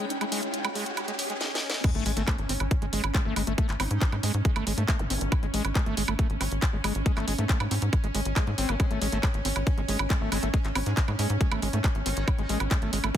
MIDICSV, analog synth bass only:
0, 0, Header, 1, 2, 480
1, 0, Start_track
1, 0, Key_signature, -4, "major"
1, 0, Tempo, 434783
1, 113, Time_signature, 4, 2, 24, 8
1, 14541, End_track
2, 0, Start_track
2, 0, Title_t, "Analog synth bass"
2, 0, Program_c, 0, 38
2, 2153, Note_on_c, 0, 32, 84
2, 2237, Note_off_c, 0, 32, 0
2, 2273, Note_on_c, 0, 33, 102
2, 2357, Note_off_c, 0, 33, 0
2, 2393, Note_on_c, 0, 32, 93
2, 2477, Note_off_c, 0, 32, 0
2, 2633, Note_on_c, 0, 32, 91
2, 2717, Note_off_c, 0, 32, 0
2, 2753, Note_on_c, 0, 32, 95
2, 2837, Note_off_c, 0, 32, 0
2, 2873, Note_on_c, 0, 32, 95
2, 2957, Note_off_c, 0, 32, 0
2, 3113, Note_on_c, 0, 32, 86
2, 3197, Note_off_c, 0, 32, 0
2, 3233, Note_on_c, 0, 32, 98
2, 3317, Note_off_c, 0, 32, 0
2, 3353, Note_on_c, 0, 32, 90
2, 3437, Note_off_c, 0, 32, 0
2, 3593, Note_on_c, 0, 32, 85
2, 3677, Note_off_c, 0, 32, 0
2, 3713, Note_on_c, 0, 32, 98
2, 3797, Note_off_c, 0, 32, 0
2, 3833, Note_on_c, 0, 32, 95
2, 3917, Note_off_c, 0, 32, 0
2, 4073, Note_on_c, 0, 32, 86
2, 4157, Note_off_c, 0, 32, 0
2, 4193, Note_on_c, 0, 32, 107
2, 4277, Note_off_c, 0, 32, 0
2, 4313, Note_on_c, 0, 44, 96
2, 4397, Note_off_c, 0, 44, 0
2, 4553, Note_on_c, 0, 44, 89
2, 4637, Note_off_c, 0, 44, 0
2, 4673, Note_on_c, 0, 44, 97
2, 4757, Note_off_c, 0, 44, 0
2, 4793, Note_on_c, 0, 44, 95
2, 4877, Note_off_c, 0, 44, 0
2, 5033, Note_on_c, 0, 32, 87
2, 5117, Note_off_c, 0, 32, 0
2, 5153, Note_on_c, 0, 32, 104
2, 5237, Note_off_c, 0, 32, 0
2, 5273, Note_on_c, 0, 44, 95
2, 5357, Note_off_c, 0, 44, 0
2, 5513, Note_on_c, 0, 32, 85
2, 5597, Note_off_c, 0, 32, 0
2, 5633, Note_on_c, 0, 32, 94
2, 5717, Note_off_c, 0, 32, 0
2, 5753, Note_on_c, 0, 32, 94
2, 5837, Note_off_c, 0, 32, 0
2, 5993, Note_on_c, 0, 32, 85
2, 6077, Note_off_c, 0, 32, 0
2, 6113, Note_on_c, 0, 33, 105
2, 6197, Note_off_c, 0, 33, 0
2, 6233, Note_on_c, 0, 32, 91
2, 6317, Note_off_c, 0, 32, 0
2, 6473, Note_on_c, 0, 32, 92
2, 6557, Note_off_c, 0, 32, 0
2, 6593, Note_on_c, 0, 32, 96
2, 6677, Note_off_c, 0, 32, 0
2, 6713, Note_on_c, 0, 32, 92
2, 6797, Note_off_c, 0, 32, 0
2, 6953, Note_on_c, 0, 32, 86
2, 7037, Note_off_c, 0, 32, 0
2, 7073, Note_on_c, 0, 32, 104
2, 7157, Note_off_c, 0, 32, 0
2, 7193, Note_on_c, 0, 32, 91
2, 7277, Note_off_c, 0, 32, 0
2, 7433, Note_on_c, 0, 32, 85
2, 7517, Note_off_c, 0, 32, 0
2, 7553, Note_on_c, 0, 32, 96
2, 7637, Note_off_c, 0, 32, 0
2, 7673, Note_on_c, 0, 32, 92
2, 7757, Note_off_c, 0, 32, 0
2, 7913, Note_on_c, 0, 32, 85
2, 7997, Note_off_c, 0, 32, 0
2, 8034, Note_on_c, 0, 32, 99
2, 8117, Note_off_c, 0, 32, 0
2, 8154, Note_on_c, 0, 44, 88
2, 8237, Note_off_c, 0, 44, 0
2, 8393, Note_on_c, 0, 44, 91
2, 8477, Note_off_c, 0, 44, 0
2, 8513, Note_on_c, 0, 44, 102
2, 8597, Note_off_c, 0, 44, 0
2, 8633, Note_on_c, 0, 44, 95
2, 8717, Note_off_c, 0, 44, 0
2, 8873, Note_on_c, 0, 32, 85
2, 8957, Note_off_c, 0, 32, 0
2, 8993, Note_on_c, 0, 32, 102
2, 9077, Note_off_c, 0, 32, 0
2, 9113, Note_on_c, 0, 32, 88
2, 9197, Note_off_c, 0, 32, 0
2, 9353, Note_on_c, 0, 44, 86
2, 9437, Note_off_c, 0, 44, 0
2, 9473, Note_on_c, 0, 32, 96
2, 9557, Note_off_c, 0, 32, 0
2, 9593, Note_on_c, 0, 32, 93
2, 9677, Note_off_c, 0, 32, 0
2, 9833, Note_on_c, 0, 32, 85
2, 9917, Note_off_c, 0, 32, 0
2, 9953, Note_on_c, 0, 33, 101
2, 10037, Note_off_c, 0, 33, 0
2, 10073, Note_on_c, 0, 32, 93
2, 10157, Note_off_c, 0, 32, 0
2, 10313, Note_on_c, 0, 32, 89
2, 10397, Note_off_c, 0, 32, 0
2, 10433, Note_on_c, 0, 32, 102
2, 10517, Note_off_c, 0, 32, 0
2, 10553, Note_on_c, 0, 32, 91
2, 10637, Note_off_c, 0, 32, 0
2, 10793, Note_on_c, 0, 32, 86
2, 10877, Note_off_c, 0, 32, 0
2, 10913, Note_on_c, 0, 32, 102
2, 10997, Note_off_c, 0, 32, 0
2, 11033, Note_on_c, 0, 32, 94
2, 11117, Note_off_c, 0, 32, 0
2, 11273, Note_on_c, 0, 32, 84
2, 11357, Note_off_c, 0, 32, 0
2, 11393, Note_on_c, 0, 32, 96
2, 11477, Note_off_c, 0, 32, 0
2, 11513, Note_on_c, 0, 32, 96
2, 11597, Note_off_c, 0, 32, 0
2, 11753, Note_on_c, 0, 32, 84
2, 11837, Note_off_c, 0, 32, 0
2, 11873, Note_on_c, 0, 32, 102
2, 11957, Note_off_c, 0, 32, 0
2, 11993, Note_on_c, 0, 44, 92
2, 12077, Note_off_c, 0, 44, 0
2, 12233, Note_on_c, 0, 44, 90
2, 12317, Note_off_c, 0, 44, 0
2, 12353, Note_on_c, 0, 44, 99
2, 12437, Note_off_c, 0, 44, 0
2, 12473, Note_on_c, 0, 44, 91
2, 12557, Note_off_c, 0, 44, 0
2, 12713, Note_on_c, 0, 32, 84
2, 12797, Note_off_c, 0, 32, 0
2, 12833, Note_on_c, 0, 32, 101
2, 12917, Note_off_c, 0, 32, 0
2, 12953, Note_on_c, 0, 44, 93
2, 13037, Note_off_c, 0, 44, 0
2, 13193, Note_on_c, 0, 32, 83
2, 13277, Note_off_c, 0, 32, 0
2, 13313, Note_on_c, 0, 32, 98
2, 13397, Note_off_c, 0, 32, 0
2, 13433, Note_on_c, 0, 32, 95
2, 13517, Note_off_c, 0, 32, 0
2, 13673, Note_on_c, 0, 32, 89
2, 13756, Note_off_c, 0, 32, 0
2, 13793, Note_on_c, 0, 33, 98
2, 13877, Note_off_c, 0, 33, 0
2, 13913, Note_on_c, 0, 32, 93
2, 13997, Note_off_c, 0, 32, 0
2, 14153, Note_on_c, 0, 32, 91
2, 14237, Note_off_c, 0, 32, 0
2, 14272, Note_on_c, 0, 32, 99
2, 14357, Note_off_c, 0, 32, 0
2, 14393, Note_on_c, 0, 32, 94
2, 14477, Note_off_c, 0, 32, 0
2, 14541, End_track
0, 0, End_of_file